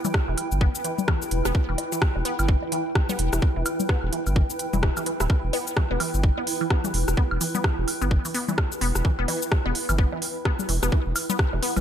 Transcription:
Already playing: ambient pad E4 B4 G5
0.05 synth pluck E3, low conga, cabasa
0.14 kick, cross-stick
0.28 sub bass E1, synth pluck E3
0.38 closed hi-hat, high woodblock
0.52 sub bass G1, cabasa
0.61 synth pluck B3, kick
0.75 cabasa
0.84 synth pluck E3, closed hi-hat, cabasa
0.98 low conga, cabasa
1.08 synth pluck E3, kick, cross-stick, high woodblock
1.22 cabasa
1.31 sub bass E1, closed hi-hat
1.45 sub bass E1, synth pluck B3, cross-stick, cabasa
1.55 kick
1.69 sub bass E1, synth pluck E3, high woodblock
1.78 closed hi-hat, low woodblock
1.92 synth pluck E3, cabasa
2.02 kick, cross-stick
2.16 sub bass E1, low woodblock
2.25 synth pluck B3, closed hi-hat
2.39 sub bass G1, cabasa, high woodblock
2.49 synth pluck E3, kick
2.63 low woodblock
2.72 synth pluck E3, closed hi-hat
2.95 kick, cross-stick, high woodblock
3.09 synth pluck B3, low conga, cabasa
3.19 sub bass E1, closed hi-hat
3.33 sub bass E1, synth pluck E3, cross-stick, cabasa
3.42 kick
3.56 sub bass E1, synth pluck E3
3.66 closed hi-hat, cabasa, high woodblock
3.80 low conga, cabasa
3.89 synth pluck B3, kick, cross-stick
4.03 sub bass E1
4.13 synth pluck E3, closed hi-hat
4.26 sub bass G1, cabasa, high woodblock
4.36 synth pluck E3, kick
4.50 cabasa
4.59 closed hi-hat, cabasa
4.73 sub bass E1, synth pluck E3, low conga, cabasa
4.83 synth pluck E3, kick, cross-stick
4.97 synth pluck E3, cabasa, high woodblock
5.06 synth pluck E3, closed hi-hat
5.20 sub bass D1, synth pluck E4, cross-stick, cabasa
5.30 kick, high woodblock
5.44 sub bass E1
5.53 synth pluck B3, open hi-hat, low woodblock
5.67 cabasa
5.77 synth pluck E3, kick, cross-stick
5.91 sub bass E1, synth pluck B3, low woodblock
6.00 synth pluck E3, open hi-hat, high woodblock
6.14 sub bass G1, cabasa
6.24 kick
6.38 synth pluck B3, low woodblock
6.47 open hi-hat
6.61 synth pluck E3, high woodblock
6.70 synth pluck B3, kick, cross-stick
6.84 synth pluck E3, low conga, cabasa
6.94 sub bass E1, open hi-hat
7.08 sub bass E1, cross-stick, cabasa
7.17 synth pluck B3, kick
7.31 sub bass E1, high woodblock
7.41 synth pluck E3, open hi-hat, cabasa
7.55 synth pluck B3, low conga, cabasa
7.64 synth pluck E3, kick, cross-stick
7.78 sub bass E1
7.88 open hi-hat, high woodblock
8.02 sub bass G1, synth pluck B3, cabasa
8.11 kick
8.25 synth pluck E3, open hi-hat, cabasa
8.34 synth pluck B3, open hi-hat, cabasa
8.48 synth pluck E3, low conga, cabasa
8.58 kick, cross-stick, high woodblock
8.72 cabasa
8.81 sub bass E1, synth pluck B3, open hi-hat
8.95 sub bass E1, cross-stick, cabasa
9.05 synth pluck E3, kick
9.19 sub bass E1, synth pluck B3, high woodblock
9.28 synth pluck E3, open hi-hat, low woodblock
9.42 cabasa
9.52 kick, cross-stick
9.66 sub bass E1, synth pluck B3, low woodblock
9.75 open hi-hat
9.89 sub bass G1, synth pluck E3, cabasa, high woodblock
9.98 synth pluck B3, kick
10.12 synth pluck E3, low woodblock
10.22 open hi-hat
10.45 synth pluck B3, kick, cross-stick, high woodblock
10.59 low conga, cabasa
10.69 sub bass E1, synth pluck E3, open hi-hat
10.83 sub bass E1, synth pluck B3, cross-stick, cabasa
10.92 synth pluck E3, kick
11.06 sub bass E1
11.16 open hi-hat, cabasa, high woodblock
11.30 synth pluck B3, low conga, cabasa
11.39 kick, cross-stick
11.53 sub bass E1, synth pluck E3, low woodblock
11.62 synth pluck B3, open hi-hat
11.76 sub bass G1, synth pluck E3, low conga, cabasa, high woodblock

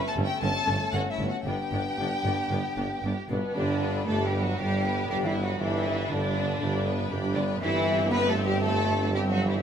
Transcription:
Already playing: french horn section A3 C#4
0.07 violin section A4 A5, flute A5
0.16 tuba G1, double bass section G1, cello section G2, viola section A3 C#4
0.25 violin section G4 G5, flute G5
0.40 double bass section G1, tuba G1, cello section G2, viola section A3 C#4, french horn section A3 C#4, violin section A5, flute A5
0.44 violin section A4
0.66 tuba G1, double bass section G1, cello section G2, viola section A3 C#4
0.93 tuba G1, double bass section G1, cello section G2, viola section A3 C#4, violin section F#4 F#5, flute F#5
1.10 violin section E4 E5, flute E5
1.19 double bass section G1, tuba G1, cello section G2, viola section A3 C#4
1.28 violin section F#4 F#5, flute F#5
1.44 double bass section G1, tuba G1, cello section G2, french horn section B3 D4, viola section B3 D4, violin section G4 G5, flute G5
1.71 double bass section G1, tuba G1, cello section G2, viola section B3 D4
1.98 double bass section G1, tuba G1, cello section G2, viola section B3 D4
2.23 tuba G1, double bass section G1, cello section G2, viola section B3 D4
2.49 tuba G1, double bass section G1, cello section G2, viola section B3 D4
2.76 tuba G1, double bass section G1, cello section G2, viola section B3 D4
3.02 double bass section G1, tuba G1, cello section G2, viola section B3 D4
3.27 double bass section G1, tuba G1, cello section G2 B2, french horn section B2, violin section B3, flute B4
3.32 viola section B3 D4
3.55 tuba G1, double bass section G2, cello section D3, french horn section D3, violin section D4 B5, viola section D4 G4, flute D5
3.81 viola section B3 B4, violin section G5
4.06 tuba G1, double bass section G2, cello section A3, french horn section A3, viola section D4 G4, violin section A4 B5, flute A5
4.24 cello section G3, french horn section G3, violin section G4, flute G5
4.32 viola section B3 B4, violin section G5
4.40 cello section F#3, violin section F#4, flute F#5
4.45 french horn section F#3
4.57 tuba G1, double bass section G2, cello section G3, french horn section G3, viola section D4 G4, violin section G4 B5, flute G5
4.84 viola section B3 B4, violin section G5
5.08 tuba G1, double bass section G2, cello section G3, french horn section G3, viola section D4 G4, violin section G4 B5, flute G5
5.24 cello section E3, french horn section E3, violin section E4, flute E5
5.34 viola section B3 B4, violin section G5
5.41 cello section F#3, french horn section F#3, violin section F#4, flute F#5
5.59 tuba G1, double bass section G2, cello section E3, french horn section E3, viola section D4 G4, violin section E4 B5, flute E5
5.84 viola section B3 B4, violin section G5
6.09 tuba G1, double bass section G2, french horn section D3, cello section D3, violin section D4 B5, viola section D4 G4, flute D5
6.35 viola section B3 B4, violin section G5
6.59 tuba G1, double bass section G2, viola section D4 G4, violin section B5
6.86 viola section B3 B4, violin section G5
7.11 tuba G1, double bass section G2, viola section D4 G4, violin section B5
7.34 cello section D3, french horn section D3, violin section D4 G5, viola section B4, flute D5
7.38 viola section B3
7.60 tuba G1, double bass section G2, cello section E3, french horn section E3, viola section C4 G4, violin section E4 E5, flute E5
8.09 french horn section B3, cello section B3, violin section B4, flute B5
8.28 french horn section A3, cello section A3, violin section A4, flute A5
8.45 french horn section G3, cello section G3, violin section G4, flute G5
8.61 french horn section A3, cello section A3, violin section A4, flute A5
9.11 french horn section G3, cello section G3, viola section C4 G4, violin section G4 E5, flute G5
9.27 french horn section F#3, cello section F#3, flute F#5
9.32 violin section F#4
9.45 french horn section E3, cello section E3, violin section E4, flute E5

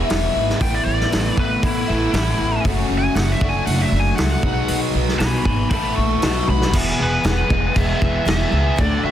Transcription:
Already playing: steel-string acoustic guitar G#3 B3 E4, tonewheel organ B3 E4 G#4, grand piano E4 G#4 B4, mandolin G#4 E5
0.08 upright bass E1, overdriven electric guitar E2 B2 E4, steel-string acoustic guitar E3 G#3, snare, open hi-hat
0.13 steel-string acoustic guitar B3
0.35 upright bass G#1
0.49 snare
0.59 upright bass A1, steel-string acoustic guitar A2 E3 A3 B3 E4, tonewheel organ B3 E4 A4, grand piano E4 A4 B4, lead electric guitar G5, kick, open hi-hat
0.74 lead electric guitar D5
0.85 upright bass A1, lead electric guitar D5
1.01 snare
1.11 upright bass A1, steel-string acoustic guitar E3 A3 B3 E4, snare, open hi-hat
1.37 upright bass A1, steel-string acoustic guitar A3 B3 E4, lead electric guitar B4, kick
1.63 upright bass A1, steel-string acoustic guitar E3 A3 B3 E4, lead electric guitar E4, kick, open hi-hat
1.89 upright bass A1, overdriven electric guitar A2 E3, steel-string acoustic guitar A3 B3 E4
2.13 upright bass A1, overdriven electric guitar A2, steel-string acoustic guitar E3 A3 B3 E4, snare, open hi-hat
2.38 upright bass A1
2.64 upright bass F#1, steel-string acoustic guitar F#2 C#3 F#3 A3 C#4 F#4, tonewheel organ C#4 F#4 A4, grand piano F#4 A4 C#5, kick, open hi-hat
2.90 upright bass F#1
2.98 lead electric guitar G#5
3.14 upright bass F#1, steel-string acoustic guitar F#3 A3 F#4, lead electric guitar F#5, snare, open hi-hat
3.32 lead electric guitar E5
3.39 upright bass F#1, overdriven electric guitar F#3, tonewheel organ D4 F#4 A4, steel-string acoustic guitar D4, grand piano F#4 A4 D5, kick
3.44 steel-string acoustic guitar A3, overdriven electric guitar F#4
3.49 lead electric guitar G#5
3.66 upright bass F#1, steel-string acoustic guitar F#3 A3 D4 F#4, lead electric guitar F#5, open hi-hat
3.81 lead electric guitar E5
3.92 upright bass F#1, steel-string acoustic guitar D4 F#4
3.96 steel-string acoustic guitar A3, lead electric guitar G#5
4.16 upright bass C#2, steel-string acoustic guitar F#3 A3 D4 F#4, lead electric guitar F#5, snare, open hi-hat
4.33 lead electric guitar F#5
4.41 upright bass B1, steel-string acoustic guitar B2 D#3 G#3 D#4 F#4, overdriven electric guitar F#3 B3, tonewheel organ D#4 G#4 B4, grand piano G#4 B4 D#5, kick
4.46 overdriven electric guitar F#4
4.54 lead electric guitar F#5
4.68 upright bass B1, open hi-hat
4.94 upright bass B1
5.09 snare
5.19 upright bass B1, steel-string acoustic guitar D#3 G#3 D#4 F#4, lead electric guitar G#5 B5, snare, open hi-hat
5.44 upright bass G#1, steel-string acoustic guitar G#3 D#4 F#4, lead electric guitar G#5 B5, kick
5.70 upright bass A1, overdriven electric guitar A2, steel-string acoustic guitar E3 A3, tonewheel organ E4 A4, grand piano A4 B4 E5, lead electric guitar G5 B5, kick, open hi-hat
5.74 steel-string acoustic guitar B3 E4, overdriven electric guitar A4, tonewheel organ B4
5.96 upright bass A#1, steel-string acoustic guitar B3 E4, lead electric guitar A5 C#6
6.01 steel-string acoustic guitar A3
6.22 upright bass B1, overdriven electric guitar B2, steel-string acoustic guitar F#3 B3 D#4 F#4, tonewheel organ D#4 F#4 B4, grand piano F#4 B4 D#5, lead electric guitar A5 C#6, snare, open hi-hat
6.48 upright bass B1, lead electric guitar B5, high tom
6.62 snare
6.73 upright bass E1, steel-string acoustic guitar E2 B2 E3 G#3 B3 G#4, grand piano E4 G#4 B4 E5, kick, crash
7.00 upright bass E1, overdriven electric guitar G#4, lead electric guitar B4
7.24 upright bass E1, steel-string acoustic guitar E2 B2 E3 G#3 B3 G#4, lead electric guitar B4, snare, crash
7.48 upright bass E1, steel-string acoustic guitar E3 G#3 B3 G#4, kick
7.74 upright bass E1, steel-string acoustic guitar E3 G#3 B3 G#4, lead electric guitar E5, kick, crash
8.01 upright bass E1, steel-string acoustic guitar E3 G#3 B3 G#4, kick
8.25 upright bass E1, steel-string acoustic guitar E2 B2 E3 G#3 B3 G#4, snare, crash
8.29 lead electric guitar E5
8.52 upright bass C#2, overdriven electric guitar G#4
8.76 upright bass D2, steel-string acoustic guitar D3 A3 D4 F#4, grand piano D4 F#4, kick, crash
8.80 overdriven electric guitar D3, grand piano A4 D5, lead electric guitar D5
9.03 upright bass D3, overdriven electric guitar F#4, lead electric guitar E5

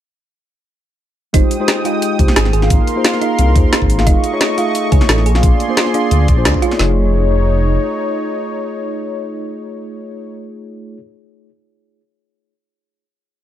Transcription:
1.33 detuned saw bass F1, tine electric piano G#3 D#4 F4 G4 C5, analog synth pad G#3 G5 D#6, synth arpeggio sound D#4, kick, closed hi-hat
1.51 closed hi-hat
1.59 tine electric piano G#3 D#4 F4 G4 C5
1.68 snare, closed hi-hat
1.84 tine electric piano G#3 D#4 F4 G4 D#5, synth arpeggio sound F4, closed hi-hat
2.02 closed hi-hat
2.18 detuned saw bass C2, tine electric piano G#3 D#4 F4 G4 C5, synth arpeggio sound G4, kick, closed hi-hat
2.28 snare
2.36 detuned saw bass G#1, synth arpeggio sound G#4, snare, closed hi-hat
2.45 snare
2.53 detuned saw bass G#1, synth arpeggio sound G#4, analog synth pad A#4 F5 C6, closed hi-hat
2.61 tine electric piano A#3 D#4 F4 G#4 F5, snare
2.70 detuned saw bass G#1, kick, closed hi-hat
2.87 closed hi-hat
2.96 tine electric piano A#3 D#4 F4 G#4 C5
3.04 synth arpeggio sound F4, snare, closed hi-hat
3.13 snare
3.21 tine electric piano A#3 D#4 F4 G#4 F5, synth arpeggio sound D#4, closed hi-hat
3.39 detuned saw bass C2, closed hi-hat
3.54 detuned saw bass D#2, tine electric piano A#3 D#4 F4 G#4 C5, kick, closed hi-hat
3.73 synth arpeggio sound F4, snare, closed hi-hat
3.82 detuned saw bass G#1, kick
3.90 closed hi-hat
3.98 tine electric piano A3 D#4 F4 G#4 F5, snare
4.07 detuned saw bass F1, analog synth pad A3 D#5 C#6, synth arpeggio sound D#4, kick, closed hi-hat
4.24 closed hi-hat
4.32 tine electric piano A3 D#4 F4 G#4 C#5
4.41 snare, closed hi-hat
4.57 tine electric piano A3 D#4 F4 G#4 F5, synth arpeggio sound F4, closed hi-hat
4.75 closed hi-hat
4.91 detuned saw bass C#2, tine electric piano A3 D#4 F4 G#4 C#5, synth arpeggio sound G#4, kick, closed hi-hat
5.01 snare
5.09 detuned saw bass A1, synth arpeggio sound A4, snare, closed hi-hat
5.18 snare
5.26 detuned saw bass A#1, analog synth pad G#4 D5 C6, synth arpeggio sound G#4, closed hi-hat
5.34 tine electric piano A#3 D4 F4 G#4 F5, snare
5.43 detuned saw bass A#1, kick, closed hi-hat
5.60 closed hi-hat
5.68 tine electric piano A#3 D4 F4 G#4 C5
5.77 synth arpeggio sound F4, snare, closed hi-hat
5.86 snare
5.93 tine electric piano A#3 D4 F4 G#4 F5, synth arpeggio sound D4, closed hi-hat
6.11 detuned saw bass D2, closed hi-hat
6.28 detuned saw bass A#1, kick, closed hi-hat
6.36 tine electric piano A#3 D4 F4 G#4 C5
6.45 detuned saw bass D2, synth arpeggio sound D4, snare, closed hi-hat
6.54 kick
6.61 tine electric piano A3 D#4 F4 G#4 C#5, synth arpeggio sound F4, closed hi-hat
6.71 snare
6.77 detuned saw bass F1, tine electric piano A3 D#4 F4, synth arpeggio sound D#4, analog synth pad D#4 C#5, snare
6.81 tine electric piano G#4 C#5

